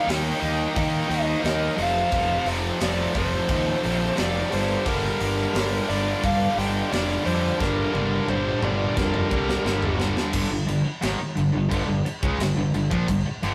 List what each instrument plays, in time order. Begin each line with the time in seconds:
0.07 fingered electric bass D#2, distorted electric guitar D#3 G3 A#3 D#4, lead electric guitar G5, snare, open hi-hat
0.11 lead electric guitar D#5
0.40 fingered electric bass D#2, overdriven electric guitar D#3 A#3 D#4, open hi-hat
0.44 distorted electric guitar D#3 G3 A#3 D#4
0.76 fingered electric bass D#3, distorted electric guitar D#3 G3 A#3 D#4, lead electric guitar G5, kick, open hi-hat
0.81 lead electric guitar D#5
1.09 fingered electric bass D#2, distorted electric guitar D#3 G3 A#3 D#4, lead electric guitar D#5, open hi-hat
1.15 lead electric guitar C5
1.41 fingered electric bass D#2, overdriven electric guitar D#3 A#3 D#4, open hi-hat
1.45 distorted electric guitar D#3 G3 A#3 D#4, lead electric guitar A#4 D#5, snare
1.76 fingered electric bass F1, overdriven electric guitar F2, distorted electric guitar C3, open hi-hat
1.80 distorted electric guitar F2 F3 A3 C4, lead electric guitar C5 F5
2.12 fingered electric bass F1, distorted electric guitar F2 C3 F3 A3 C4, kick, open hi-hat
2.45 fingered electric bass F1, distorted electric guitar F2 C3 F3 A3 C4, open hi-hat
2.80 fingered electric bass F1, distorted electric guitar F2 C3 F3 A3 C4, lead electric guitar D5, snare, open hi-hat
2.86 lead electric guitar A4
3.15 fingered electric bass F1, distorted electric guitar F2 C3 F3 A3 C4, lead electric guitar A4 C5, kick, open hi-hat
3.49 fingered electric bass D#2, distorted electric guitar F2 C3 F3 A3 C4, kick, open hi-hat
3.83 fingered electric bass A#1, distorted electric guitar F2 C3 F3 A3 C4, open hi-hat
4.17 fingered electric bass F1, distorted electric guitar F2 C3 F3 A3 C4, lead electric guitar A4 D5, snare, open hi-hat
4.51 fingered electric bass G1, distorted electric guitar G2 D3 G3 A#3 D4, lead electric guitar G4 C5, open hi-hat
4.85 fingered electric bass G1, distorted electric guitar G2 D3 G3 A#3 D4, lead electric guitar G4 A#4, kick, open hi-hat
5.20 fingered electric bass G1, distorted electric guitar G2 D3 G3 A#3 D4, open hi-hat
5.55 fingered electric bass G1, distorted electric guitar G2 D3 G3 A#3 D4, snare, open hi-hat
5.88 fingered electric bass G1, distorted electric guitar G2 D3 G3 A#3 D4, lead electric guitar A#4 D5, open hi-hat
6.23 distorted electric guitar G2 D3 G3 A#3 D4, fingered electric bass G2, lead electric guitar D5 F5, kick, open hi-hat
6.57 fingered electric bass G1, distorted electric guitar G2 D3 G3 A#3 D4, lead electric guitar D#5 G5, open hi-hat
6.91 fingered electric bass F1, distorted electric guitar G2 D3 G3 A#3 D4, lead electric guitar A#4 D5, snare, open hi-hat
7.24 fingered electric bass F2, distorted electric guitar G2 D3 G3 A#3 D4, lead electric guitar A4 C5, open hi-hat
7.58 fingered electric bass G1, distorted electric guitar G2 D3 G3 A#3 D4, lead electric guitar A#4, kick, snare
7.65 lead electric guitar G4
7.93 fingered electric bass G1, distorted electric guitar G2 D3 G3 A#3 D4, lead electric guitar A#4, high tom
7.98 lead electric guitar G4
8.27 fingered electric bass G1, distorted electric guitar G2 D3 G3 A#3 D4, lead electric guitar C5, mid tom
8.31 lead electric guitar G4
8.62 fingered electric bass G1, distorted electric guitar G2 D3 G3 A#3 D4, lead electric guitar D5, mid tom
8.69 lead electric guitar A#4
8.96 fingered electric bass F1, distorted electric guitar G2 D3 G3 A#3 D4, lead electric guitar G4 A#4, kick, snare
9.14 mid tom
9.31 fingered electric bass C2, distorted electric guitar G2 D3 G3 A#3 D4, kick
9.49 snare
9.64 fingered electric bass G1, distorted electric guitar G2 D3 G3 A#3 D4, snare
9.82 floor tom
9.99 distorted electric guitar G2 D3 G3 A#3 D4, snare
10.17 snare
10.32 fingered electric bass G1, distorted electric guitar G2 D3, kick, crash
10.51 fingered electric bass G1, distorted electric guitar G2 D3
10.68 fingered electric bass G1, distorted electric guitar G2 D3, crash
10.84 muted overdriven electric guitar stroke, muted fingered electric bass stroke, muted distorted electric guitar stroke
11.02 fingered electric bass G#1, distorted electric guitar G#2 D#3, snare, crash
11.19 muted overdriven electric guitar stroke, muted fingered electric bass stroke, muted distorted electric guitar stroke
11.37 fingered electric bass G1, distorted electric guitar G2 D3, crash
11.52 fingered electric bass G1, overdriven electric guitar G2
11.56 distorted electric guitar G2 D3
11.71 fingered electric bass G1, distorted electric guitar G2 D3, kick, crash
11.88 fingered electric bass G1, distorted electric guitar G2 D3
12.05 muted fingered electric bass stroke, muted overdriven electric guitar stroke, muted distorted electric guitar stroke, crash
12.22 fingered electric bass C#2, distorted electric guitar C#3 G#3, kick
12.38 fingered electric bass G1, distorted electric guitar G2 D3, snare, crash
12.56 fingered electric bass G1, distorted electric guitar G2 D3
12.74 fingered electric bass G1, distorted electric guitar G2 D3, crash
12.91 fingered electric bass A#1, distorted electric guitar A#2 F3, kick
13.08 fingered electric bass G1, distorted electric guitar G2 D3, kick, crash
13.26 muted overdriven electric guitar stroke, muted fingered electric bass stroke, muted distorted electric guitar stroke
13.43 fingered electric bass G1, distorted electric guitar G2 D3, crash